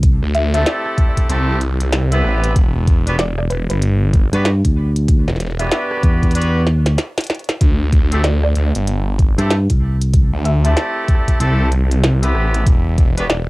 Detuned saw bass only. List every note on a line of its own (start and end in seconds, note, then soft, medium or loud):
0.23 0.64 D2 loud
1.30 2.22 C2 medium
2.24 2.54 A1 medium
2.56 3.49 E1 loud
3.51 3.67 E1 loud
3.70 4.30 G1 medium
5.28 5.70 E1 medium
7.61 8.54 D2 loud
8.56 8.72 D2 loud
8.75 9.35 G1 loud
10.33 10.75 D2 medium
11.40 12.33 C2 medium
12.35 12.64 A1 loud
12.67 13.50 E1 loud